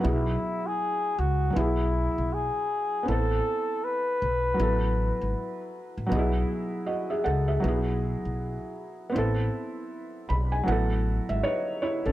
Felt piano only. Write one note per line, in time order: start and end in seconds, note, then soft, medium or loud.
0.00 1.49 F#3 medium
0.00 1.51 B3 medium
0.00 1.52 E4 medium
0.07 1.54 G#4 medium
1.50 3.02 F#3 medium
1.50 3.02 B3 medium
1.56 3.04 E4 medium
1.56 3.06 G#4 medium
3.03 4.54 B3 medium
3.03 4.55 C4 medium
3.08 4.57 E4 medium
3.08 4.58 A4 medium
4.54 6.05 F#3 medium
4.54 6.07 B3 medium
4.60 6.08 E4 medium
4.60 6.10 A4 medium
6.06 7.58 F#3 medium
6.06 7.59 B3 medium
6.12 6.20 D#4 medium
6.12 6.87 G#4 medium
6.19 7.64 E4 medium
6.86 7.09 F#4 soft
6.86 7.09 D#5 medium
7.10 7.24 G#4 medium
7.10 7.24 E5 medium
7.24 7.47 A4 medium
7.24 7.47 F#5 medium
7.48 7.67 G#4 soft
7.48 7.84 E5 medium
7.60 9.10 F#3 medium
7.60 9.08 B3 medium
7.66 9.13 E4 medium
7.66 9.15 G#4 medium
9.10 10.61 B3 medium
9.10 10.62 C4 medium
9.15 10.64 E4 medium
9.15 10.65 A4 medium
10.29 10.51 B5 medium
10.52 10.66 G#5 medium
10.63 12.12 F#3 medium
10.63 12.12 B3 medium
10.67 11.42 E4 medium
10.67 11.25 F#5 medium
10.72 11.44 A4 medium
11.29 11.42 E5 medium
11.43 11.79 D#4 medium
11.43 11.79 B4 medium
11.43 11.81 C#5 medium
11.82 12.04 E4 medium
11.82 12.04 C#5 medium
12.06 12.12 C#4 medium
12.06 12.12 A4 medium